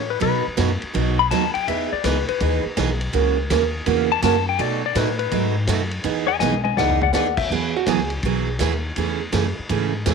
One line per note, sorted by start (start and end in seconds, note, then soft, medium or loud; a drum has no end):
0.00 0.20 A2 medium
0.10 0.21 B4 medium
0.20 0.43 B2 soft
0.20 0.44 B2 medium
0.20 0.44 F#3 medium
0.20 0.44 B3 medium
0.20 0.44 D#4 medium
0.20 0.44 F#4 medium
0.20 0.46 B4 loud
0.20 kick soft
0.20 ride medium
0.47 muted upright bass stroke soft
0.57 0.81 F#2 medium
0.57 0.70 B2 medium
0.57 0.70 F#3 medium
0.57 0.70 B3 medium
0.57 0.70 D#4 medium
0.57 0.70 F#4 medium
0.57 kick soft
0.57 snare medium
0.57 hi-hat pedal medium
0.57 ride medium
0.82 muted upright bass stroke soft
0.82 ride soft
0.94 1.30 B1 loud
0.94 1.17 B2 medium
0.94 1.17 F#3 soft
0.94 1.17 B3 medium
0.94 1.17 D#4 medium
0.94 1.17 F#4 medium
0.94 kick soft
0.94 ride medium
1.19 1.30 B5 loud
1.31 1.54 D#2 medium
1.31 1.43 B2 medium
1.31 1.43 F#3 medium
1.31 1.44 B3 medium
1.31 1.43 D#4 medium
1.31 1.44 F#4 medium
1.31 1.54 A5 medium
1.31 kick soft
1.31 snare medium
1.31 hi-hat pedal medium
1.31 ride medium
1.54 1.67 G5 medium
1.54 muted upright bass stroke soft
1.54 ride soft
1.68 1.90 E2 medium
1.68 1.90 E3 medium
1.68 1.91 B3 soft
1.68 1.91 D#4 soft
1.68 1.91 G#4 medium
1.68 1.91 E5 medium
1.68 kick soft
1.68 ride medium
1.93 2.04 D5 medium
1.93 muted upright bass stroke soft
2.04 2.26 C#2 medium
2.04 2.16 E3 medium
2.04 2.16 B3 medium
2.04 2.17 D#4 medium
2.04 2.17 G#4 medium
2.04 2.28 B4 loud
2.04 kick soft
2.04 snare medium
2.04 hi-hat pedal medium
2.04 ride medium
2.28 2.64 B4 medium
2.28 muted upright bass stroke soft
2.28 ride soft
2.40 2.63 D#2 loud
2.40 2.63 E3 soft
2.40 2.63 B3 medium
2.40 2.63 D#4 medium
2.40 2.63 G#4 medium
2.40 kick soft
2.40 ride medium
2.65 muted upright bass stroke soft
2.77 3.12 B1 medium
2.77 2.89 E3 medium
2.77 2.89 B3 medium
2.77 2.89 D#4 medium
2.77 2.89 G#4 medium
2.77 kick soft
2.77 snare medium
2.77 hi-hat pedal medium
2.77 ride medium
3.01 ride medium
3.13 3.49 C#2 medium
3.13 3.36 C#3 medium
3.13 3.36 E3 medium
3.13 3.36 A#3 medium
3.13 3.36 C#4 medium
3.13 3.36 F#4 medium
3.13 kick soft
3.13 ride medium
3.50 3.86 D#2 medium
3.50 3.62 C#3 medium
3.50 3.62 E3 medium
3.50 3.62 A#3 medium
3.50 3.62 C#4 medium
3.50 3.62 F#4 medium
3.50 kick soft
3.50 snare medium
3.50 hi-hat pedal medium
3.50 ride medium
3.86 4.22 E2 loud
3.86 4.09 C#3 medium
3.86 4.09 E3 medium
3.86 4.09 A#3 medium
3.86 4.09 C#4 medium
3.86 4.09 F#4 medium
3.86 kick soft
3.86 ride medium
4.12 4.23 A5 loud
4.22 4.58 F#2 medium
4.22 4.34 C#3 medium
4.22 4.35 E3 medium
4.22 4.35 A#3 medium
4.22 4.35 C#4 medium
4.22 4.35 F#4 medium
4.22 4.47 A5 loud
4.22 kick soft
4.22 snare medium
4.22 hi-hat pedal medium
4.22 ride medium
4.49 4.60 G5 medium
4.59 4.81 B2 medium
4.59 4.95 B2 medium
4.59 4.82 F#3 medium
4.59 4.82 A3 medium
4.59 4.82 D#4 medium
4.59 4.82 F#4 medium
4.59 4.84 D5 medium
4.59 kick soft
4.59 ride medium
4.86 4.97 D5 loud
4.95 5.31 A2 medium
4.95 5.07 B2 medium
4.95 5.08 F#3 medium
4.95 5.08 A3 medium
4.95 5.08 D#4 medium
4.95 5.08 F#4 medium
4.95 5.18 B4 loud
4.95 kick soft
4.95 snare medium
4.95 hi-hat pedal medium
4.95 ride medium
5.19 5.55 B4 medium
5.19 ride soft
5.31 5.67 G#2 loud
5.31 5.54 B2 soft
5.31 5.54 F#3 medium
5.31 5.55 A3 medium
5.31 5.55 D#4 medium
5.31 5.55 F#4 medium
5.31 kick soft
5.31 ride medium
5.67 6.03 F#2 medium
5.67 5.80 B2 medium
5.67 5.80 F#3 medium
5.67 5.80 A3 medium
5.67 5.81 D#4 medium
5.67 5.81 F#4 medium
5.67 kick soft
5.67 snare medium
5.67 hi-hat pedal medium
5.67 ride medium
5.91 ride soft
6.04 6.40 E2 medium
6.04 6.27 E3 medium
6.04 6.27 B3 medium
6.04 6.27 D#4 medium
6.04 6.27 G#4 medium
6.04 kick soft
6.04 ride medium
6.27 6.38 D#5 medium
6.27 6.39 G#5 medium
6.39 6.76 B1 medium
6.39 6.53 E3 medium
6.39 6.54 B3 medium
6.39 6.54 D#4 medium
6.39 6.54 G#4 medium
6.39 6.62 D#5 medium
6.39 6.63 G#5 loud
6.39 snare medium
6.39 hi-hat pedal medium
6.53 high tom medium
6.64 6.76 D#5 medium
6.64 6.77 G#5 medium
6.64 high tom medium
6.77 7.13 C#2 loud
6.77 7.01 E3 medium
6.77 7.01 B3 medium
6.77 7.01 D#4 medium
6.77 7.01 G#4 medium
6.77 7.02 D5 medium
6.77 7.01 F#5 loud
6.77 snare medium
6.89 floor tom medium
7.01 7.13 D5 medium
7.01 7.14 F#5 loud
7.01 floor tom medium
7.13 7.49 D#2 loud
7.13 7.26 E3 medium
7.13 7.26 B3 medium
7.13 7.26 D#4 medium
7.13 7.26 G#4 medium
7.13 7.37 D5 medium
7.13 7.38 F#5 medium
7.13 snare medium
7.13 hi-hat pedal medium
7.37 7.50 E5 medium
7.37 kick medium
7.37 crash medium
7.50 7.86 E2 medium
7.50 7.73 E3 medium
7.50 7.74 F#3 medium
7.50 7.74 B3 medium
7.50 7.74 E4 medium
7.50 7.74 G#4 medium
7.50 kick soft
7.76 7.88 F#4 medium
7.86 8.22 C#2 medium
7.86 7.99 E3 medium
7.86 7.99 F#3 medium
7.86 7.99 B3 medium
7.86 8.00 E4 medium
7.86 8.00 G#4 medium
7.86 kick soft
7.86 snare medium
7.86 hi-hat pedal medium
7.86 ride medium
8.10 ride soft
8.23 8.59 B1 medium
8.23 8.47 E3 medium
8.23 8.47 F#3 medium
8.23 8.47 B3 medium
8.23 8.47 E4 medium
8.23 8.47 G#4 medium
8.23 kick soft
8.23 ride medium
8.59 8.95 D#2 medium
8.59 8.72 E3 medium
8.59 8.72 F#3 medium
8.59 8.72 B3 medium
8.59 8.72 E4 medium
8.59 8.72 G#4 medium
8.59 kick soft
8.59 snare medium
8.59 hi-hat pedal medium
8.59 ride medium
8.96 9.32 E2 medium
8.96 9.19 C#3 medium
8.96 9.20 E3 medium
8.96 9.20 A3 soft
8.96 9.20 C#4 medium
8.96 9.20 G#4 medium
8.96 kick soft
8.96 ride medium
9.32 9.55 F#2 medium
9.32 9.45 C#3 medium
9.32 9.45 E3 medium
9.32 9.45 A3 medium
9.32 9.45 C#4 medium
9.32 9.45 G#4 medium
9.32 kick soft
9.32 snare medium
9.32 hi-hat pedal soft
9.32 ride medium
9.59 muted upright bass stroke soft
9.69 10.05 G#2 medium
9.69 9.92 C#3 medium
9.69 9.92 E3 medium
9.69 9.93 A3 medium
9.69 9.92 C#4 medium
9.69 9.92 G#4 medium
9.69 kick soft
9.69 ride medium
10.06 10.14 E2 medium
10.06 10.14 C#3 medium
10.06 10.14 E3 medium
10.06 10.14 A3 medium
10.06 10.14 C#4 medium
10.06 10.14 G#4 medium
10.06 kick soft
10.06 snare medium
10.06 hi-hat pedal medium
10.06 ride medium